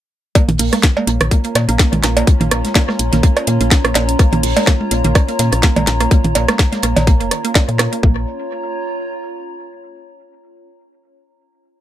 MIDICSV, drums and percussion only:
0, 0, Header, 1, 2, 480
1, 0, Start_track
1, 0, Key_signature, -5, "minor"
1, 0, Tempo, 480000
1, 353, Time_signature, 4, 2, 24, 8
1, 11806, End_track
2, 0, Start_track
2, 0, Title_t, "Drums"
2, 353, Note_on_c, 9, 36, 124
2, 354, Note_on_c, 9, 42, 56
2, 354, Note_on_c, 9, 56, 65
2, 453, Note_off_c, 9, 36, 0
2, 454, Note_off_c, 9, 42, 0
2, 454, Note_off_c, 9, 56, 0
2, 485, Note_on_c, 9, 47, 100
2, 486, Note_on_c, 9, 42, 32
2, 581, Note_on_c, 9, 46, 75
2, 585, Note_off_c, 9, 47, 0
2, 586, Note_off_c, 9, 42, 0
2, 594, Note_on_c, 9, 42, 97
2, 681, Note_off_c, 9, 46, 0
2, 694, Note_off_c, 9, 42, 0
2, 725, Note_on_c, 9, 38, 48
2, 726, Note_on_c, 9, 42, 46
2, 727, Note_on_c, 9, 37, 41
2, 727, Note_on_c, 9, 48, 52
2, 825, Note_off_c, 9, 38, 0
2, 826, Note_off_c, 9, 42, 0
2, 827, Note_off_c, 9, 37, 0
2, 827, Note_off_c, 9, 48, 0
2, 829, Note_on_c, 9, 42, 88
2, 833, Note_on_c, 9, 36, 114
2, 834, Note_off_c, 9, 42, 0
2, 834, Note_on_c, 9, 38, 98
2, 834, Note_on_c, 9, 42, 55
2, 840, Note_off_c, 9, 38, 0
2, 840, Note_on_c, 9, 38, 122
2, 933, Note_off_c, 9, 36, 0
2, 934, Note_off_c, 9, 42, 0
2, 940, Note_off_c, 9, 38, 0
2, 967, Note_on_c, 9, 48, 54
2, 967, Note_on_c, 9, 56, 66
2, 1067, Note_off_c, 9, 48, 0
2, 1067, Note_off_c, 9, 56, 0
2, 1074, Note_on_c, 9, 42, 93
2, 1081, Note_off_c, 9, 42, 0
2, 1081, Note_on_c, 9, 42, 72
2, 1181, Note_off_c, 9, 42, 0
2, 1206, Note_on_c, 9, 42, 42
2, 1208, Note_on_c, 9, 37, 82
2, 1208, Note_on_c, 9, 47, 82
2, 1306, Note_off_c, 9, 42, 0
2, 1308, Note_off_c, 9, 37, 0
2, 1308, Note_off_c, 9, 47, 0
2, 1312, Note_on_c, 9, 42, 94
2, 1313, Note_on_c, 9, 36, 110
2, 1314, Note_off_c, 9, 42, 0
2, 1314, Note_on_c, 9, 42, 57
2, 1413, Note_off_c, 9, 36, 0
2, 1414, Note_off_c, 9, 42, 0
2, 1438, Note_on_c, 9, 42, 47
2, 1446, Note_off_c, 9, 42, 0
2, 1446, Note_on_c, 9, 42, 30
2, 1546, Note_off_c, 9, 42, 0
2, 1552, Note_on_c, 9, 42, 75
2, 1554, Note_off_c, 9, 42, 0
2, 1554, Note_on_c, 9, 42, 90
2, 1556, Note_on_c, 9, 37, 42
2, 1556, Note_on_c, 9, 56, 68
2, 1560, Note_on_c, 9, 38, 40
2, 1654, Note_off_c, 9, 42, 0
2, 1656, Note_off_c, 9, 37, 0
2, 1656, Note_off_c, 9, 56, 0
2, 1660, Note_off_c, 9, 38, 0
2, 1687, Note_on_c, 9, 42, 48
2, 1787, Note_off_c, 9, 42, 0
2, 1789, Note_on_c, 9, 38, 102
2, 1792, Note_on_c, 9, 42, 90
2, 1793, Note_on_c, 9, 36, 112
2, 1794, Note_off_c, 9, 38, 0
2, 1794, Note_off_c, 9, 42, 0
2, 1794, Note_on_c, 9, 38, 98
2, 1794, Note_on_c, 9, 42, 55
2, 1893, Note_off_c, 9, 36, 0
2, 1894, Note_off_c, 9, 38, 0
2, 1894, Note_off_c, 9, 42, 0
2, 1927, Note_on_c, 9, 42, 32
2, 1928, Note_on_c, 9, 47, 96
2, 1928, Note_on_c, 9, 48, 51
2, 2027, Note_off_c, 9, 42, 0
2, 2028, Note_off_c, 9, 47, 0
2, 2028, Note_off_c, 9, 48, 0
2, 2032, Note_on_c, 9, 42, 69
2, 2034, Note_on_c, 9, 37, 42
2, 2035, Note_off_c, 9, 42, 0
2, 2035, Note_on_c, 9, 38, 67
2, 2035, Note_on_c, 9, 42, 93
2, 2134, Note_off_c, 9, 37, 0
2, 2135, Note_off_c, 9, 38, 0
2, 2135, Note_off_c, 9, 42, 0
2, 2167, Note_on_c, 9, 42, 47
2, 2167, Note_on_c, 9, 56, 66
2, 2267, Note_off_c, 9, 42, 0
2, 2267, Note_off_c, 9, 56, 0
2, 2272, Note_on_c, 9, 42, 87
2, 2273, Note_on_c, 9, 36, 127
2, 2274, Note_off_c, 9, 42, 0
2, 2274, Note_on_c, 9, 42, 54
2, 2373, Note_off_c, 9, 36, 0
2, 2375, Note_off_c, 9, 42, 0
2, 2407, Note_on_c, 9, 42, 31
2, 2407, Note_on_c, 9, 47, 99
2, 2507, Note_off_c, 9, 42, 0
2, 2507, Note_off_c, 9, 47, 0
2, 2512, Note_on_c, 9, 42, 75
2, 2514, Note_off_c, 9, 42, 0
2, 2514, Note_on_c, 9, 42, 100
2, 2515, Note_on_c, 9, 37, 76
2, 2614, Note_off_c, 9, 42, 0
2, 2615, Note_off_c, 9, 37, 0
2, 2646, Note_on_c, 9, 42, 42
2, 2647, Note_on_c, 9, 48, 52
2, 2650, Note_on_c, 9, 38, 46
2, 2746, Note_off_c, 9, 42, 0
2, 2747, Note_off_c, 9, 48, 0
2, 2749, Note_off_c, 9, 38, 0
2, 2749, Note_on_c, 9, 38, 127
2, 2753, Note_on_c, 9, 36, 110
2, 2754, Note_off_c, 9, 38, 0
2, 2754, Note_on_c, 9, 38, 101
2, 2754, Note_on_c, 9, 42, 54
2, 2754, Note_on_c, 9, 56, 68
2, 2757, Note_off_c, 9, 42, 0
2, 2757, Note_on_c, 9, 42, 86
2, 2853, Note_off_c, 9, 36, 0
2, 2854, Note_off_c, 9, 38, 0
2, 2854, Note_off_c, 9, 56, 0
2, 2857, Note_off_c, 9, 42, 0
2, 2885, Note_on_c, 9, 37, 41
2, 2885, Note_on_c, 9, 48, 59
2, 2888, Note_on_c, 9, 38, 58
2, 2985, Note_off_c, 9, 37, 0
2, 2985, Note_off_c, 9, 48, 0
2, 2988, Note_off_c, 9, 38, 0
2, 2993, Note_on_c, 9, 42, 67
2, 2994, Note_off_c, 9, 42, 0
2, 2994, Note_on_c, 9, 42, 99
2, 3094, Note_off_c, 9, 42, 0
2, 3124, Note_on_c, 9, 38, 56
2, 3126, Note_on_c, 9, 42, 43
2, 3126, Note_on_c, 9, 47, 83
2, 3224, Note_off_c, 9, 38, 0
2, 3226, Note_off_c, 9, 42, 0
2, 3226, Note_off_c, 9, 47, 0
2, 3233, Note_on_c, 9, 36, 121
2, 3234, Note_on_c, 9, 42, 55
2, 3242, Note_off_c, 9, 42, 0
2, 3242, Note_on_c, 9, 42, 82
2, 3333, Note_off_c, 9, 36, 0
2, 3342, Note_off_c, 9, 42, 0
2, 3366, Note_on_c, 9, 37, 43
2, 3366, Note_on_c, 9, 42, 30
2, 3366, Note_on_c, 9, 56, 70
2, 3466, Note_off_c, 9, 37, 0
2, 3466, Note_off_c, 9, 42, 0
2, 3466, Note_off_c, 9, 56, 0
2, 3471, Note_on_c, 9, 42, 71
2, 3473, Note_off_c, 9, 42, 0
2, 3473, Note_on_c, 9, 42, 98
2, 3573, Note_off_c, 9, 42, 0
2, 3606, Note_on_c, 9, 42, 45
2, 3706, Note_off_c, 9, 42, 0
2, 3713, Note_on_c, 9, 36, 112
2, 3714, Note_on_c, 9, 38, 98
2, 3714, Note_on_c, 9, 42, 55
2, 3715, Note_off_c, 9, 38, 0
2, 3715, Note_on_c, 9, 38, 110
2, 3717, Note_off_c, 9, 42, 0
2, 3717, Note_on_c, 9, 42, 86
2, 3813, Note_off_c, 9, 36, 0
2, 3815, Note_off_c, 9, 38, 0
2, 3817, Note_off_c, 9, 42, 0
2, 3846, Note_on_c, 9, 37, 81
2, 3846, Note_on_c, 9, 42, 31
2, 3946, Note_off_c, 9, 37, 0
2, 3946, Note_off_c, 9, 42, 0
2, 3946, Note_on_c, 9, 42, 71
2, 3954, Note_off_c, 9, 42, 0
2, 3954, Note_on_c, 9, 38, 67
2, 3954, Note_on_c, 9, 42, 96
2, 3954, Note_on_c, 9, 56, 70
2, 4053, Note_off_c, 9, 38, 0
2, 4053, Note_off_c, 9, 42, 0
2, 4054, Note_off_c, 9, 56, 0
2, 4086, Note_on_c, 9, 42, 44
2, 4186, Note_off_c, 9, 42, 0
2, 4193, Note_on_c, 9, 36, 127
2, 4193, Note_on_c, 9, 42, 97
2, 4194, Note_off_c, 9, 42, 0
2, 4194, Note_on_c, 9, 42, 55
2, 4195, Note_on_c, 9, 37, 39
2, 4293, Note_off_c, 9, 36, 0
2, 4294, Note_off_c, 9, 42, 0
2, 4295, Note_off_c, 9, 37, 0
2, 4326, Note_on_c, 9, 42, 28
2, 4327, Note_on_c, 9, 47, 101
2, 4426, Note_off_c, 9, 42, 0
2, 4427, Note_off_c, 9, 47, 0
2, 4434, Note_on_c, 9, 42, 104
2, 4435, Note_on_c, 9, 46, 83
2, 4534, Note_off_c, 9, 42, 0
2, 4535, Note_off_c, 9, 46, 0
2, 4560, Note_on_c, 9, 38, 51
2, 4566, Note_on_c, 9, 42, 42
2, 4566, Note_on_c, 9, 48, 54
2, 4566, Note_on_c, 9, 56, 65
2, 4660, Note_off_c, 9, 38, 0
2, 4666, Note_off_c, 9, 42, 0
2, 4666, Note_off_c, 9, 48, 0
2, 4666, Note_off_c, 9, 56, 0
2, 4671, Note_on_c, 9, 42, 93
2, 4672, Note_off_c, 9, 42, 0
2, 4672, Note_on_c, 9, 36, 116
2, 4672, Note_on_c, 9, 38, 96
2, 4672, Note_on_c, 9, 42, 51
2, 4674, Note_on_c, 9, 37, 39
2, 4677, Note_off_c, 9, 38, 0
2, 4677, Note_on_c, 9, 38, 121
2, 4772, Note_off_c, 9, 36, 0
2, 4772, Note_off_c, 9, 42, 0
2, 4774, Note_off_c, 9, 37, 0
2, 4777, Note_off_c, 9, 38, 0
2, 4807, Note_on_c, 9, 48, 60
2, 4907, Note_off_c, 9, 48, 0
2, 4912, Note_on_c, 9, 42, 103
2, 4918, Note_off_c, 9, 42, 0
2, 4918, Note_on_c, 9, 42, 61
2, 5018, Note_off_c, 9, 42, 0
2, 5045, Note_on_c, 9, 42, 43
2, 5046, Note_on_c, 9, 47, 80
2, 5145, Note_off_c, 9, 42, 0
2, 5146, Note_off_c, 9, 47, 0
2, 5152, Note_on_c, 9, 36, 127
2, 5152, Note_on_c, 9, 42, 51
2, 5153, Note_on_c, 9, 37, 76
2, 5153, Note_on_c, 9, 56, 62
2, 5155, Note_off_c, 9, 42, 0
2, 5155, Note_on_c, 9, 42, 91
2, 5252, Note_off_c, 9, 36, 0
2, 5253, Note_off_c, 9, 37, 0
2, 5253, Note_off_c, 9, 56, 0
2, 5255, Note_off_c, 9, 42, 0
2, 5285, Note_on_c, 9, 42, 28
2, 5290, Note_off_c, 9, 42, 0
2, 5290, Note_on_c, 9, 42, 43
2, 5390, Note_off_c, 9, 42, 0
2, 5392, Note_on_c, 9, 38, 41
2, 5392, Note_on_c, 9, 42, 99
2, 5397, Note_off_c, 9, 42, 0
2, 5397, Note_on_c, 9, 42, 61
2, 5492, Note_off_c, 9, 38, 0
2, 5497, Note_off_c, 9, 42, 0
2, 5525, Note_on_c, 9, 42, 46
2, 5526, Note_on_c, 9, 37, 36
2, 5625, Note_off_c, 9, 42, 0
2, 5626, Note_off_c, 9, 37, 0
2, 5626, Note_on_c, 9, 42, 93
2, 5627, Note_on_c, 9, 38, 112
2, 5632, Note_off_c, 9, 38, 0
2, 5632, Note_off_c, 9, 42, 0
2, 5632, Note_on_c, 9, 36, 116
2, 5632, Note_on_c, 9, 38, 96
2, 5632, Note_on_c, 9, 42, 54
2, 5732, Note_off_c, 9, 36, 0
2, 5732, Note_off_c, 9, 38, 0
2, 5732, Note_off_c, 9, 42, 0
2, 5764, Note_on_c, 9, 42, 31
2, 5764, Note_on_c, 9, 47, 95
2, 5764, Note_on_c, 9, 48, 57
2, 5764, Note_on_c, 9, 56, 67
2, 5864, Note_off_c, 9, 42, 0
2, 5864, Note_off_c, 9, 47, 0
2, 5864, Note_off_c, 9, 48, 0
2, 5864, Note_off_c, 9, 56, 0
2, 5870, Note_on_c, 9, 42, 63
2, 5872, Note_off_c, 9, 42, 0
2, 5872, Note_on_c, 9, 38, 62
2, 5872, Note_on_c, 9, 42, 95
2, 5972, Note_off_c, 9, 38, 0
2, 5972, Note_off_c, 9, 42, 0
2, 6005, Note_on_c, 9, 37, 37
2, 6005, Note_on_c, 9, 42, 41
2, 6105, Note_off_c, 9, 37, 0
2, 6105, Note_off_c, 9, 42, 0
2, 6110, Note_on_c, 9, 42, 89
2, 6112, Note_off_c, 9, 42, 0
2, 6112, Note_on_c, 9, 36, 127
2, 6112, Note_on_c, 9, 42, 51
2, 6212, Note_off_c, 9, 36, 0
2, 6212, Note_off_c, 9, 42, 0
2, 6244, Note_on_c, 9, 47, 93
2, 6245, Note_on_c, 9, 42, 28
2, 6344, Note_off_c, 9, 47, 0
2, 6345, Note_off_c, 9, 42, 0
2, 6352, Note_on_c, 9, 42, 99
2, 6353, Note_on_c, 9, 56, 62
2, 6452, Note_off_c, 9, 42, 0
2, 6453, Note_off_c, 9, 56, 0
2, 6484, Note_on_c, 9, 38, 45
2, 6485, Note_on_c, 9, 37, 75
2, 6485, Note_on_c, 9, 42, 43
2, 6485, Note_on_c, 9, 48, 53
2, 6584, Note_off_c, 9, 38, 0
2, 6585, Note_off_c, 9, 37, 0
2, 6585, Note_off_c, 9, 42, 0
2, 6585, Note_off_c, 9, 48, 0
2, 6588, Note_on_c, 9, 38, 126
2, 6592, Note_off_c, 9, 38, 0
2, 6592, Note_on_c, 9, 36, 112
2, 6592, Note_on_c, 9, 38, 89
2, 6592, Note_on_c, 9, 42, 50
2, 6692, Note_off_c, 9, 36, 0
2, 6692, Note_off_c, 9, 38, 0
2, 6692, Note_off_c, 9, 42, 0
2, 6723, Note_on_c, 9, 38, 65
2, 6724, Note_on_c, 9, 48, 60
2, 6725, Note_on_c, 9, 42, 28
2, 6823, Note_off_c, 9, 38, 0
2, 6824, Note_off_c, 9, 48, 0
2, 6825, Note_off_c, 9, 42, 0
2, 6825, Note_on_c, 9, 42, 73
2, 6832, Note_on_c, 9, 37, 36
2, 6833, Note_off_c, 9, 42, 0
2, 6833, Note_on_c, 9, 42, 98
2, 6932, Note_off_c, 9, 37, 0
2, 6933, Note_off_c, 9, 42, 0
2, 6965, Note_on_c, 9, 47, 82
2, 6965, Note_on_c, 9, 56, 64
2, 6966, Note_on_c, 9, 38, 61
2, 6966, Note_on_c, 9, 42, 39
2, 7065, Note_off_c, 9, 47, 0
2, 7065, Note_off_c, 9, 56, 0
2, 7066, Note_off_c, 9, 38, 0
2, 7066, Note_off_c, 9, 42, 0
2, 7072, Note_on_c, 9, 36, 120
2, 7074, Note_on_c, 9, 42, 50
2, 7076, Note_off_c, 9, 42, 0
2, 7076, Note_on_c, 9, 42, 91
2, 7172, Note_off_c, 9, 36, 0
2, 7176, Note_off_c, 9, 42, 0
2, 7206, Note_on_c, 9, 42, 29
2, 7306, Note_off_c, 9, 42, 0
2, 7313, Note_on_c, 9, 37, 40
2, 7313, Note_on_c, 9, 42, 95
2, 7318, Note_off_c, 9, 42, 0
2, 7318, Note_on_c, 9, 42, 68
2, 7413, Note_off_c, 9, 37, 0
2, 7418, Note_off_c, 9, 42, 0
2, 7446, Note_on_c, 9, 42, 43
2, 7546, Note_off_c, 9, 42, 0
2, 7549, Note_on_c, 9, 38, 118
2, 7553, Note_on_c, 9, 36, 114
2, 7553, Note_on_c, 9, 56, 66
2, 7554, Note_off_c, 9, 38, 0
2, 7554, Note_on_c, 9, 38, 97
2, 7554, Note_on_c, 9, 42, 51
2, 7556, Note_off_c, 9, 42, 0
2, 7556, Note_on_c, 9, 42, 88
2, 7653, Note_off_c, 9, 36, 0
2, 7653, Note_off_c, 9, 56, 0
2, 7654, Note_off_c, 9, 38, 0
2, 7656, Note_off_c, 9, 42, 0
2, 7686, Note_on_c, 9, 42, 29
2, 7786, Note_off_c, 9, 42, 0
2, 7792, Note_on_c, 9, 37, 82
2, 7794, Note_on_c, 9, 38, 61
2, 7794, Note_on_c, 9, 42, 97
2, 7795, Note_off_c, 9, 42, 0
2, 7795, Note_on_c, 9, 42, 63
2, 7892, Note_off_c, 9, 37, 0
2, 7894, Note_off_c, 9, 38, 0
2, 7895, Note_off_c, 9, 42, 0
2, 7927, Note_on_c, 9, 42, 43
2, 8027, Note_off_c, 9, 42, 0
2, 8033, Note_on_c, 9, 36, 123
2, 8133, Note_off_c, 9, 36, 0
2, 11806, End_track
0, 0, End_of_file